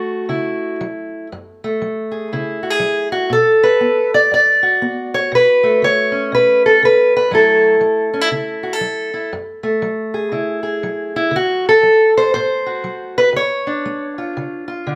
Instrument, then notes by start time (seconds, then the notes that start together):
steel-string acoustic guitar
Already playing: F#3 A3 F#4
0.29 C#3 E4
0.81 F#3
1.32 F#2
1.64 A3
1.82 F#3
2.12 G#4
2.33 C#3 E4
2.63 F#4
2.70 G#4
2.80 F#3
3.12 F#4
3.30 B2 A4
3.63 B4
3.81 B3
4.14 D5
4.31 F#2 D5
4.63 F#4
4.82 B3
5.14 C#5
5.32 B2 B4
5.63 A3
5.82 D3 C#5
6.12 C#4
6.32 B2 B4
6.66 A4
6.83 D3 B4
7.17 B4
7.31 F#2 F#3 A3 E4 A4
7.81 F#3
8.14 C#4
8.21 E4
8.31 C#3 E4
8.63 F#4
8.73 A4
8.81 F#3
9.14 E4
9.33 F#2
9.63 A3
9.82 F#3
10.14 G#4
10.32 C#3 E4
10.63 G#4
10.83 F#3
11.16 E4
11.31 D3
11.36 F#4
11.69 A4
11.83 F#3
12.17 C5
12.34 A2 C5
12.66 F#4
12.84 F#3
13.18 B4
13.33 C#3 C#5
13.67 D4
13.86 G#3
14.18 F4
14.37 C#3
14.68 F4
14.87 D3